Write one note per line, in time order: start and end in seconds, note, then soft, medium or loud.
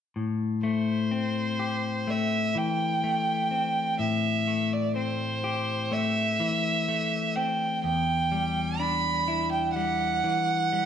0.16 2.56 A2 soft
0.63 2.06 A3 soft
0.63 2.12 C5 soft
1.11 3.50 C4 soft
1.59 4.02 G4 soft
2.07 3.02 A3 soft
2.07 2.60 E5 soft
2.55 6.05 E3 soft
2.55 4.00 G5 medium
3.04 4.46 A3 soft
3.51 4.95 C4 soft
3.99 6.39 A2 soft
3.99 4.75 E5 medium
4.48 5.90 A3 soft
4.73 4.96 D5 soft
4.96 7.36 C4 soft
4.96 5.95 C5 medium
5.44 8.94 G4 soft
5.92 6.87 A3 soft
5.92 7.37 E5 medium
6.40 8.83 E3 soft
6.88 7.84 A3 soft
7.36 7.84 C4 soft
7.36 7.84 G5 soft
7.84 10.24 E2 soft
7.84 8.82 G5 medium
8.32 9.76 G3 soft
8.80 10.86 D4 soft
8.80 9.51 B5 medium
9.28 10.86 E4 soft
9.52 9.74 G5 soft
9.75 10.72 G3 soft
9.75 10.86 F#5 medium
10.24 10.86 E3 soft
10.72 10.86 G3 soft